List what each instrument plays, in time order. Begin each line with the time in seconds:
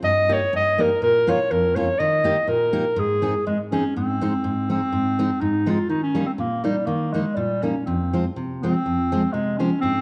0.02 steel-string acoustic guitar G2, clarinet D#5
0.29 steel-string acoustic guitar A#3 D#4 G4
0.33 clarinet C#5
0.53 steel-string acoustic guitar G2, clarinet D#5
0.78 steel-string acoustic guitar A#3 D#4 G4, clarinet A#4
1.02 steel-string acoustic guitar A#2, clarinet A#4
1.27 steel-string acoustic guitar A#3 C#4 F4, clarinet C#5
1.51 steel-string acoustic guitar F2, clarinet A#4
1.76 steel-string acoustic guitar A#3 C#4 F4, clarinet C#5
1.99 steel-string acoustic guitar D#3, clarinet D#5
2.24 steel-string acoustic guitar A#3 D#4 G4
2.47 steel-string acoustic guitar A#2, clarinet A#4
2.73 steel-string acoustic guitar A#3 D#4 G4
2.96 steel-string acoustic guitar G#2, clarinet G#4
3.22 steel-string acoustic guitar C4 D#4 G#4
3.46 steel-string acoustic guitar G#2, clarinet G#3
3.71 steel-string acoustic guitar C4 D#4 G#4, clarinet C#4
3.96 steel-string acoustic guitar G#2, clarinet C4
4.21 steel-string acoustic guitar G#3 C4 D#4
4.44 steel-string acoustic guitar G#2
4.70 steel-string acoustic guitar G#3 C4 D#4, clarinet C4
4.93 steel-string acoustic guitar G#2
5.19 steel-string acoustic guitar G#3 C4 D#4
5.41 steel-string acoustic guitar G#2, clarinet D#4
5.66 steel-string acoustic guitar G#3 C4 D#4, clarinet F4
5.89 steel-string acoustic guitar D#3, clarinet D#4
6.03 clarinet C#4
6.15 steel-string acoustic guitar G3 A#3 D#4
6.27 clarinet C4
6.38 steel-string acoustic guitar A#2, clarinet A#3
6.64 steel-string acoustic guitar G3 A#3 D#4, clarinet G3
6.86 steel-string acoustic guitar D#3, clarinet A#3
7.13 steel-string acoustic guitar G3 A#3 D#4, clarinet G#3
7.36 steel-string acoustic guitar A#2, clarinet G3
7.62 steel-string acoustic guitar G3 A#3 D#4, clarinet C#4
7.86 steel-string acoustic guitar F2, clarinet C4
8.13 steel-string acoustic guitar F3 G#3 C4
8.36 steel-string acoustic guitar C3
8.62 steel-string acoustic guitar F3 G#3 C4, clarinet C4
8.86 steel-string acoustic guitar F2
9.12 steel-string acoustic guitar F3 G#3 C4
9.32 steel-string acoustic guitar C3, clarinet G#3
9.58 steel-string acoustic guitar F3 G#3 C4, clarinet C#4
9.81 steel-string acoustic guitar G#2, clarinet C4